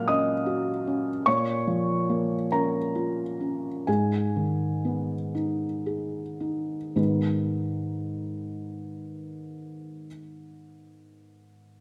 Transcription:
0, 0, Header, 1, 2, 480
1, 0, Start_track
1, 0, Tempo, 785340
1, 772, Tempo, 839161
1, 773, Time_signature, 6, 3, 24, 8
1, 1732, Tempo, 949367
1, 2692, Tempo, 1025641
1, 3172, Tempo, 1100917
1, 3652, Tempo, 1058201
1, 4612, Tempo, 1081081
1, 5821, End_track
2, 0, Start_track
2, 0, Title_t, "Felt piano"
2, 0, Program_c, 0, 0
2, 0, Control_c, 0, 64, 127
2, 0, Note_on_c, 0, 46, 51
2, 0, Note_on_c, 0, 54, 44
2, 0, Note_on_c, 0, 58, 45
2, 0, Note_on_c, 0, 77, 59
2, 0, Note_on_c, 0, 78, 62
2, 0, Note_on_c, 0, 89, 82
2, 0, Note_on_c, 0, 90, 77
2, 47, Note_on_c, 0, 87, 66
2, 50, Note_on_c, 0, 61, 40
2, 52, Note_on_c, 0, 75, 50
2, 191, Note_off_c, 0, 58, 0
2, 282, Note_on_c, 0, 66, 42
2, 427, Note_off_c, 0, 61, 0
2, 533, Note_on_c, 0, 61, 36
2, 671, Note_off_c, 0, 66, 0
2, 749, Note_off_c, 0, 75, 0
2, 751, Note_off_c, 0, 46, 0
2, 770, Note_off_c, 0, 87, 0
2, 770, Note_on_c, 0, 85, 79
2, 776, Note_off_c, 0, 61, 0
2, 777, Note_on_c, 0, 46, 55
2, 781, Note_on_c, 0, 73, 54
2, 784, Control_c, 0, 64, 0
2, 785, Note_off_c, 0, 54, 0
2, 785, Note_off_c, 0, 90, 0
2, 787, Note_off_c, 0, 77, 0
2, 787, Note_off_c, 0, 78, 0
2, 790, Note_off_c, 0, 89, 0
2, 865, Control_c, 0, 64, 127
2, 1006, Note_on_c, 0, 53, 43
2, 1247, Note_on_c, 0, 58, 38
2, 1384, Note_off_c, 0, 53, 0
2, 1463, Note_off_c, 0, 73, 0
2, 1481, Note_off_c, 0, 85, 0
2, 1491, Note_on_c, 0, 82, 59
2, 1492, Note_on_c, 0, 70, 45
2, 1493, Note_on_c, 0, 61, 33
2, 1635, Note_off_c, 0, 58, 0
2, 1737, Note_on_c, 0, 65, 37
2, 1873, Note_off_c, 0, 61, 0
2, 1966, Note_on_c, 0, 61, 29
2, 2107, Note_off_c, 0, 65, 0
2, 2183, Note_off_c, 0, 46, 0
2, 2186, Note_off_c, 0, 70, 0
2, 2203, Note_on_c, 0, 80, 51
2, 2204, Note_off_c, 0, 61, 0
2, 2205, Note_off_c, 0, 82, 0
2, 2205, Note_on_c, 0, 44, 41
2, 2208, Note_on_c, 0, 68, 39
2, 2212, Control_c, 0, 64, 0
2, 2317, Control_c, 0, 64, 127
2, 2451, Note_on_c, 0, 51, 31
2, 2695, Note_on_c, 0, 59, 30
2, 2834, Note_off_c, 0, 51, 0
2, 2912, Note_off_c, 0, 68, 0
2, 2928, Note_off_c, 0, 80, 0
2, 2929, Note_on_c, 0, 63, 30
2, 3074, Note_off_c, 0, 59, 0
2, 3170, Note_on_c, 0, 68, 31
2, 3317, Note_off_c, 0, 63, 0
2, 3406, Note_on_c, 0, 63, 25
2, 3558, Note_off_c, 0, 68, 0
2, 3637, Note_off_c, 0, 44, 0
2, 3644, Note_off_c, 0, 63, 0
2, 3648, Note_on_c, 0, 44, 38
2, 3648, Note_on_c, 0, 59, 31
2, 3649, Note_on_c, 0, 51, 33
2, 3650, Note_on_c, 0, 71, 31
2, 3651, Note_on_c, 0, 63, 30
2, 3651, Note_on_c, 0, 68, 31
2, 3664, Control_c, 0, 64, 0
2, 3755, Control_c, 0, 64, 127
2, 5047, Note_off_c, 0, 44, 0
2, 5047, Note_off_c, 0, 59, 0
2, 5048, Note_off_c, 0, 51, 0
2, 5049, Note_off_c, 0, 71, 0
2, 5050, Note_off_c, 0, 63, 0
2, 5050, Note_off_c, 0, 68, 0
2, 5821, End_track
0, 0, End_of_file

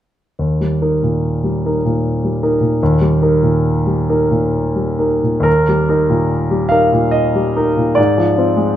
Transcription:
0, 0, Header, 1, 2, 480
1, 0, Start_track
1, 0, Key_signature, -3, "major"
1, 0, Tempo, 849858
1, 216, Time_signature, 3, 2, 24, 8
1, 693, Tempo, 788436
1, 1653, Tempo, 827586
1, 2133, Tempo, 914634
1, 3093, Tempo, 828729
1, 5006, End_track
2, 0, Start_track
2, 0, Title_t, "Grand piano"
2, 0, Program_c, 0, 0
2, 220, Note_on_c, 0, 39, 36
2, 337, Control_c, 0, 64, 127
2, 343, Note_on_c, 0, 55, 30
2, 462, Note_on_c, 0, 70, 31
2, 463, Note_on_c, 0, 63, 29
2, 531, Note_off_c, 0, 55, 0
2, 566, Note_off_c, 0, 70, 0
2, 567, Note_off_c, 0, 63, 0
2, 582, Note_on_c, 0, 46, 31
2, 822, Note_on_c, 0, 55, 32
2, 956, Note_on_c, 0, 70, 33
2, 957, Note_on_c, 0, 63, 30
2, 971, Note_off_c, 0, 46, 0
2, 1018, Note_off_c, 0, 55, 0
2, 1060, Note_off_c, 0, 63, 0
2, 1060, Note_off_c, 0, 70, 0
2, 1074, Note_on_c, 0, 46, 35
2, 1312, Note_on_c, 0, 55, 34
2, 1426, Note_on_c, 0, 63, 36
2, 1426, Note_on_c, 0, 70, 40
2, 1446, Note_off_c, 0, 46, 0
2, 1494, Note_off_c, 0, 55, 0
2, 1527, Note_off_c, 0, 70, 0
2, 1528, Note_off_c, 0, 63, 0
2, 1534, Note_on_c, 0, 46, 35
2, 1631, Note_off_c, 0, 39, 0
2, 1664, Control_c, 0, 64, 0
2, 1666, Note_on_c, 0, 39, 52
2, 1721, Note_off_c, 0, 46, 0
2, 1745, Control_c, 0, 64, 127
2, 1773, Note_on_c, 0, 55, 42
2, 1896, Note_on_c, 0, 63, 36
2, 1898, Note_on_c, 0, 70, 39
2, 1961, Note_off_c, 0, 55, 0
2, 2001, Note_off_c, 0, 63, 0
2, 2002, Note_off_c, 0, 70, 0
2, 2016, Note_on_c, 0, 46, 36
2, 2256, Note_on_c, 0, 55, 36
2, 2376, Note_on_c, 0, 63, 33
2, 2377, Note_on_c, 0, 70, 37
2, 2394, Note_off_c, 0, 46, 0
2, 2441, Note_off_c, 0, 55, 0
2, 2478, Note_off_c, 0, 63, 0
2, 2479, Note_off_c, 0, 70, 0
2, 2489, Note_on_c, 0, 46, 37
2, 2724, Note_on_c, 0, 55, 32
2, 2845, Note_on_c, 0, 63, 31
2, 2848, Note_on_c, 0, 70, 34
2, 2879, Note_off_c, 0, 46, 0
2, 2927, Note_off_c, 0, 55, 0
2, 2960, Note_off_c, 0, 63, 0
2, 2962, Note_off_c, 0, 70, 0
2, 2972, Note_on_c, 0, 46, 29
2, 3053, Note_off_c, 0, 39, 0
2, 3061, Note_on_c, 0, 39, 40
2, 3078, Note_on_c, 0, 70, 52
2, 3092, Note_off_c, 0, 46, 0
2, 3104, Control_c, 0, 64, 0
2, 3195, Control_c, 0, 64, 127
2, 3223, Note_on_c, 0, 55, 32
2, 3335, Note_off_c, 0, 70, 0
2, 3343, Note_on_c, 0, 63, 28
2, 3344, Note_on_c, 0, 70, 31
2, 3419, Note_off_c, 0, 55, 0
2, 3453, Note_off_c, 0, 63, 0
2, 3454, Note_off_c, 0, 70, 0
2, 3462, Note_on_c, 0, 46, 31
2, 3700, Note_on_c, 0, 55, 31
2, 3803, Note_on_c, 0, 77, 54
2, 3818, Note_on_c, 0, 63, 30
2, 3818, Note_on_c, 0, 70, 33
2, 3850, Note_off_c, 0, 46, 0
2, 3896, Note_off_c, 0, 55, 0
2, 3930, Note_off_c, 0, 63, 0
2, 3930, Note_off_c, 0, 70, 0
2, 3943, Note_on_c, 0, 46, 31
2, 4050, Note_on_c, 0, 75, 47
2, 4056, Note_off_c, 0, 77, 0
2, 4190, Note_on_c, 0, 55, 31
2, 4311, Note_on_c, 0, 63, 30
2, 4313, Note_on_c, 0, 70, 32
2, 4331, Note_off_c, 0, 46, 0
2, 4382, Note_off_c, 0, 55, 0
2, 4418, Note_off_c, 0, 63, 0
2, 4419, Note_off_c, 0, 70, 0
2, 4430, Note_on_c, 0, 46, 28
2, 4507, Note_off_c, 0, 39, 0
2, 4535, Note_on_c, 0, 74, 56
2, 4539, Note_off_c, 0, 75, 0
2, 4549, Note_off_c, 0, 46, 0
2, 4549, Note_on_c, 0, 44, 41
2, 4559, Control_c, 0, 64, 0
2, 4666, Control_c, 0, 64, 127
2, 4667, Note_on_c, 0, 53, 31
2, 4782, Note_on_c, 0, 60, 29
2, 4786, Note_on_c, 0, 65, 33
2, 4852, Note_off_c, 0, 53, 0
2, 4886, Note_off_c, 0, 60, 0
2, 4888, Note_off_c, 0, 65, 0
2, 4892, Note_on_c, 0, 56, 31
2, 5006, Note_off_c, 0, 44, 0
2, 5006, Note_off_c, 0, 56, 0
2, 5006, Note_off_c, 0, 74, 0
2, 5006, End_track
0, 0, End_of_file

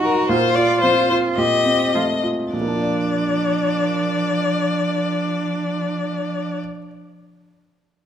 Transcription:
0, 0, Header, 1, 5, 480
1, 0, Start_track
1, 0, Key_signature, -2, "major"
1, 0, Tempo, 548948
1, 247, Time_signature, 4, 2, 24, 8
1, 1697, Tempo, 580271
1, 6757, End_track
2, 0, Start_track
2, 0, Title_t, "Violin"
2, 0, Program_c, 0, 40
2, 32, Note_on_c, 0, 70, 53
2, 237, Note_off_c, 0, 70, 0
2, 242, Note_on_c, 0, 72, 65
2, 482, Note_on_c, 0, 74, 65
2, 495, Note_off_c, 0, 72, 0
2, 701, Note_off_c, 0, 74, 0
2, 706, Note_on_c, 0, 72, 69
2, 947, Note_off_c, 0, 72, 0
2, 954, Note_on_c, 0, 72, 55
2, 1024, Note_off_c, 0, 72, 0
2, 1192, Note_on_c, 0, 75, 67
2, 1924, Note_off_c, 0, 75, 0
2, 2182, Note_on_c, 0, 74, 44
2, 5524, Note_off_c, 0, 74, 0
2, 6757, End_track
3, 0, Start_track
3, 0, Title_t, "Cello"
3, 0, Program_c, 1, 42
3, 0, Note_on_c, 1, 66, 51
3, 252, Note_on_c, 1, 65, 59
3, 265, Note_off_c, 1, 66, 0
3, 1208, Note_on_c, 1, 67, 44
3, 1221, Note_off_c, 1, 65, 0
3, 1696, Note_off_c, 1, 67, 0
3, 1701, Note_on_c, 1, 65, 35
3, 1767, Note_off_c, 1, 65, 0
3, 2184, Note_on_c, 1, 53, 36
3, 5526, Note_off_c, 1, 53, 0
3, 6757, End_track
4, 0, Start_track
4, 0, Title_t, "Grand piano"
4, 0, Program_c, 2, 0
4, 0, Control_c, 2, 64, 127
4, 0, Note_on_c, 2, 46, 49
4, 0, Note_on_c, 2, 54, 37
4, 0, Note_on_c, 2, 63, 44
4, 0, Note_on_c, 2, 66, 40
4, 25, Note_off_c, 2, 66, 0
4, 25, Note_on_c, 2, 66, 40
4, 158, Note_off_c, 2, 63, 0
4, 251, Note_off_c, 2, 66, 0
4, 255, Note_off_c, 2, 46, 0
4, 255, Note_on_c, 2, 46, 55
4, 263, Control_c, 2, 64, 0
4, 270, Note_off_c, 2, 54, 0
4, 409, Control_c, 2, 64, 127
4, 497, Note_on_c, 2, 65, 40
4, 727, Note_on_c, 2, 60, 41
4, 870, Note_off_c, 2, 65, 0
4, 971, Note_on_c, 2, 65, 37
4, 1107, Note_off_c, 2, 60, 0
4, 1176, Note_off_c, 2, 46, 0
4, 1202, Note_on_c, 2, 46, 34
4, 1354, Note_off_c, 2, 65, 0
4, 1449, Note_on_c, 2, 60, 33
4, 1699, Note_on_c, 2, 57, 30
4, 1844, Note_off_c, 2, 60, 0
4, 1939, Note_on_c, 2, 65, 28
4, 2091, Note_off_c, 2, 57, 0
4, 2159, Note_off_c, 2, 46, 0
4, 2185, Note_off_c, 2, 65, 0
4, 2188, Note_on_c, 2, 46, 29
4, 2206, Control_c, 2, 64, 0
4, 2251, Note_on_c, 2, 58, 27
4, 2307, Note_on_c, 2, 62, 29
4, 2363, Note_on_c, 2, 65, 26
4, 2379, Control_c, 2, 64, 127
4, 2422, Note_on_c, 2, 74, 28
4, 5530, Note_off_c, 2, 46, 0
4, 5551, Control_c, 2, 64, 0
4, 5593, Note_off_c, 2, 58, 0
4, 5649, Note_off_c, 2, 62, 0
4, 5705, Note_off_c, 2, 65, 0
4, 5764, Note_off_c, 2, 74, 0
4, 6757, End_track
5, 0, Start_track
5, 0, Title_t, "Viola"
5, 0, Program_c, 3, 41
5, 0, Note_on_c, 3, 54, 53
5, 134, Note_off_c, 3, 54, 0
5, 721, Note_on_c, 3, 53, 48
5, 1077, Note_off_c, 3, 53, 0
5, 1703, Note_on_c, 3, 53, 38
5, 2066, Note_off_c, 3, 53, 0
5, 2188, Note_on_c, 3, 62, 36
5, 5530, Note_off_c, 3, 62, 0
5, 6757, End_track
0, 0, End_of_file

